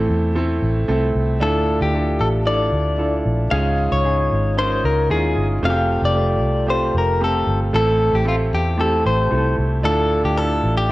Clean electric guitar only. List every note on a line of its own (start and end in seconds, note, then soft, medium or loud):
1.42 1.79 A4 medium
1.82 2.22 G4 medium
2.21 2.28 A4 medium
2.47 3.22 D5 medium
3.51 3.92 F5 loud
3.92 4.58 C#5 medium
4.58 4.82 C5 medium
4.85 5.09 A#4 medium
5.11 5.47 G#4 medium
5.65 6.01 F5 medium
6.05 6.66 D5 medium
6.70 6.96 C5 medium
6.98 7.21 A#4 medium
7.24 7.59 A4 medium
7.76 8.15 A4 medium
8.15 8.28 G4 medium
8.28 8.35 F4 medium
8.55 8.81 G4 medium
8.81 9.04 A4 medium
9.07 9.55 C5 medium
9.85 10.22 A4 loud
10.25 10.37 G4 medium
10.37 10.77 A4 medium
10.78 10.89 G4 medium